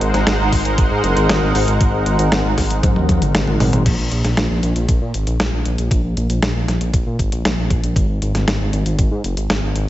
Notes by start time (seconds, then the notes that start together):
Already playing: G#3 D#4 A#4 C5 F#5
0.01 G#1, closed hi-hat
0.14 G#1, snare, closed hi-hat
0.27 G#1, snare, closed hi-hat
0.40 G#1
0.52 G#1, kick, open hi-hat
0.65 G#1, closed hi-hat
0.78 G#1, kick, closed hi-hat
0.91 G#2
1.03 F#1, closed hi-hat
1.16 G#1, closed hi-hat
1.29 G#1, snare, closed hi-hat
1.42 G#1
1.55 G#1, open hi-hat
1.68 G#1, closed hi-hat
1.81 G#1, kick, closed hi-hat
1.93 G#1
2.06 G#1, closed hi-hat
2.19 G#1, closed hi-hat
2.32 G#1, snare, closed hi-hat
2.45 G#1
2.58 G#1, kick, snare, open hi-hat
2.70 G#1, closed hi-hat
2.83 G#2, kick, closed hi-hat, high tom
2.96 D#2, high tom
3.09 D#2, kick, closed hi-hat, high tom
3.22 G#1, closed hi-hat, mid tom
3.35 G#1, snare, closed hi-hat, mid tom
3.47 G#1, mid tom
3.60 G#1, mid tom, open hi-hat
3.73 G#1, closed hi-hat, mid tom
3.86 A#1, kick, closed hi-hat, crash
3.99 A#1
4.12 A#1, closed hi-hat
4.25 A#1, snare, closed hi-hat
4.37 A#1, snare, closed hi-hat
4.51 A#1
4.63 A#1, closed hi-hat
4.76 A#1, closed hi-hat
4.89 A#1, kick, closed hi-hat
5.01 A#2
5.14 G#1, closed hi-hat
5.27 A#1, closed hi-hat
5.40 A#1, snare, closed hi-hat
5.53 A#1
5.66 A#1, closed hi-hat
5.78 A#1, closed hi-hat
5.91 A#1, kick, closed hi-hat
6.04 A#1
6.17 A#1, closed hi-hat
6.29 A#1, closed hi-hat
6.42 A#1, snare, closed hi-hat
6.55 A#1
6.68 A#1, snare, closed hi-hat
6.81 A#1, closed hi-hat
6.94 A#1, kick, closed hi-hat
7.07 A#2
7.19 G#1, kick, closed hi-hat
7.32 A#1, closed hi-hat
7.45 A#1, snare, closed hi-hat
7.58 A#1
7.70 A#1, kick, closed hi-hat
7.83 A#1, closed hi-hat
7.96 G#1, kick, closed hi-hat
8.09 G#1
8.22 G#1, closed hi-hat
8.35 G#1, snare, closed hi-hat
8.48 G#1, snare, closed hi-hat
8.60 G#1
8.73 G#1, closed hi-hat
8.86 G#1, closed hi-hat
8.99 G#1, kick, closed hi-hat
9.11 G#2
9.24 F#1, closed hi-hat
9.37 G#1, closed hi-hat
9.50 G#1, snare, closed hi-hat
9.63 G#1
9.76 G#1, closed hi-hat